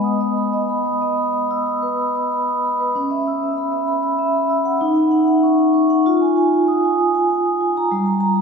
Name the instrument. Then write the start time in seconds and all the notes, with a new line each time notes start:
vibraphone
Already playing: B3 D#5
0.04 D#6
0.21 D#5
0.37 B5
0.53 D#5
0.69 B5
0.85 D#6
1.02 D#5
1.18 B5
1.34 D#6
1.51 E6
1.66 D#6
1.83 B4
1.99 B5
2.15 D#6
2.32 B5
2.48 D#6
2.64 B5
2.80 B4
2.95 C#4
3.11 E5
3.27 E6
3.43 E5
3.58 B5
3.72 E5
3.88 B5
4.03 E6
4.19 E5
4.34 B5
4.50 E6
4.65 F#5
4.81 D#4
4.95 F#5
5.11 F#5
5.28 F#5
5.43 C#6
5.59 F#5
5.74 C#6
5.90 F#5
6.06 F4
6.21 G#5
6.37 G#5
6.53 G#5
6.68 D#6
6.84 G#5
6.98 D#6
7.14 G#5
7.30 G#5
7.46 D#6
7.61 G#5
7.77 A#5
7.91 G3
8.06 A#5
8.20 A#5
8.36 A#5